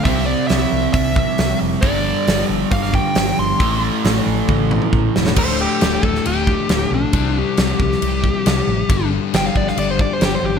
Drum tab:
CC |----------------|----------------|----------------|x---x---x---x---|
HH |o---o---o---o---|o---o---o---o---|o---o-----------|----------------|
SD |----o-------o---|----o----o--o---|----o---------oo|----o--o----o---|
T1 |----------------|----------------|--------o-------|----------------|
T2 |----------------|----------------|----------oo----|----------------|
BD |o-------o-o-----|o-------o-o-----|o-------o---o---|o-----o---o-----|

CC |x---x---x---x---|x---x---x---x---|
HH |----------------|----------------|
SD |----o--o----o---|----o--o----o---|
T1 |----------------|----------------|
T2 |----------------|----------------|
BD |o-----o---o-----|o-----o---o-----|